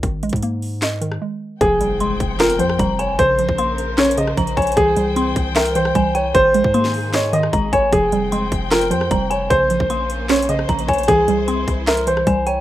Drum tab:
HH |x-----------x---x---x---x-----------o-----------x-----------x-----------------------------------|x-----------x-----------x-----------x-----------x-----x-----x-----------x-----------x-----------|x-----------x-----------x-----------x-----------x---x---x---x-----------x-----x-----x--x--x--x--|x-----------x-----------x-----------x-----------x-----x-----x-----------x-----------x-----------|
CP |------------------------------------------------x-----------------------------------------------|------------------------------------------------x-----------------------------------------------|------------------------------------------------x-----------------------------------------------|------------------------------------------------x-----------------------------------------------|
SD |------------------------------------------------o-----------------r-----------------------------|------------------------------------------------o-----------------r-----------------------------|------------------------------------------------o-----------------r-----------------------------|------------------------------------------------o-----------------r-----------------------------|
BD |o-----------------o-----------------------------------------------------------------------------|o-----------------------------------o-----------------------------------o-----------------------|o-----------------o-----------------------------------------------------o-----------o-----------|o-----------------------------------o-----------------------------------o-----------------------|

HH |x-----------x-----------x-----------o-----------x-----------x-----------x-----------x-----------|x-----------x-----------x-----------x-----------x-----x-----x-----------x-----------x-----------|x-----------x-----------x-----------x-----------x---x---x---x-----------x-----x-----x--x--x--x--|x-----------x-----------x-----------x-----------x-----x-----x-----------x-----------x-----------|
CP |------------------------------------------------x-----------------------------------------------|------------------------------------------------x-----------------------------------------------|------------------------------------------------x-----------------------------------------------|------------------------------------------------x-----------------------------------------------|
SD |------------------------------o-----------------o-----------------r-----------------------------|------------------------------------------------o-----------------r-----------------------------|------------------------------------------------o-----------------r-----------------------------|------------------------------------------------o-----------------r-----------------------------|
BD |o-----------------o-----------------------------------------------------o-----------o-----------|o-----------------------------------o-----------------------------------o-----------------------|o-----------------o-----------------------------------------------------o-----------o-----------|o-----------------------------------o-----------------------------------o-----------------------|